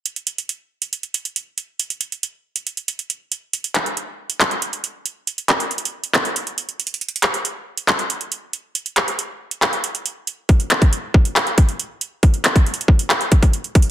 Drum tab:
HH |x--x--x--x--x--------x--x--x--x--x--x-----x-----|x--x--x--x--x--------x--x--x--x--x--x-----x-----|x--x--x--x--x--------x--x--x--x--x--x-----x-----|x--x--x--x--x-x-x----x--x--x--x--x--x--x--x-x-x-|
CP |------------------------------------------------|------------------------------------------------|------x-----------------x-----------------------|------x-----------------x-----------------------|
BD |------------------------------------------------|------------------------------------------------|------------------------------------------------|------------------------------------------------|

HH |x-x-x-x--x--x--------x--x--x--x--x--x-----x-----|x--x--x--x--x--------x--x--x--x--x--x-----x-----|x--x--x--x--x--------x--x--x--x--x--x-----x-----|x--x--x--x--x-x-x----x--x--x--x--x--x--x--x-x---|
CP |------x-----------------x-----------------------|------x-----------------x-----------------------|------x-----------------x-----------------------|------x-----------------x-----------------------|
BD |------------------------------------------------|------------------------------------------------|o--------o--------o-----------o-----------------|o--------o--------o-----------o--o--------o-----|